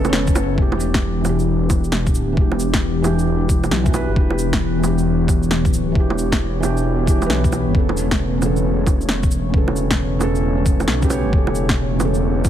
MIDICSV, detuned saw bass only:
0, 0, Header, 1, 2, 480
1, 0, Start_track
1, 0, Tempo, 447761
1, 624, Time_signature, 4, 2, 24, 8
1, 13395, End_track
2, 0, Start_track
2, 0, Title_t, "Detuned saw bass"
2, 0, Program_c, 0, 39
2, 0, Note_on_c, 0, 28, 100
2, 371, Note_off_c, 0, 28, 0
2, 381, Note_on_c, 0, 30, 82
2, 609, Note_off_c, 0, 30, 0
2, 620, Note_on_c, 0, 28, 95
2, 2291, Note_off_c, 0, 28, 0
2, 2302, Note_on_c, 0, 26, 92
2, 2529, Note_off_c, 0, 26, 0
2, 2545, Note_on_c, 0, 28, 94
2, 3976, Note_off_c, 0, 28, 0
2, 3983, Note_on_c, 0, 35, 100
2, 4358, Note_off_c, 0, 35, 0
2, 4376, Note_on_c, 0, 31, 82
2, 4456, Note_off_c, 0, 31, 0
2, 4465, Note_on_c, 0, 28, 98
2, 6134, Note_off_c, 0, 28, 0
2, 6143, Note_on_c, 0, 26, 92
2, 6370, Note_off_c, 0, 26, 0
2, 6386, Note_on_c, 0, 28, 94
2, 7813, Note_off_c, 0, 28, 0
2, 7820, Note_on_c, 0, 35, 102
2, 8196, Note_off_c, 0, 35, 0
2, 8219, Note_on_c, 0, 31, 84
2, 8298, Note_off_c, 0, 31, 0
2, 8306, Note_on_c, 0, 28, 96
2, 9974, Note_off_c, 0, 28, 0
2, 9984, Note_on_c, 0, 28, 90
2, 10210, Note_off_c, 0, 28, 0
2, 10225, Note_on_c, 0, 28, 97
2, 11660, Note_off_c, 0, 28, 0
2, 11667, Note_on_c, 0, 35, 100
2, 12040, Note_off_c, 0, 35, 0
2, 12059, Note_on_c, 0, 31, 85
2, 12138, Note_off_c, 0, 31, 0
2, 12148, Note_on_c, 0, 28, 97
2, 13395, Note_off_c, 0, 28, 0
2, 13395, End_track
0, 0, End_of_file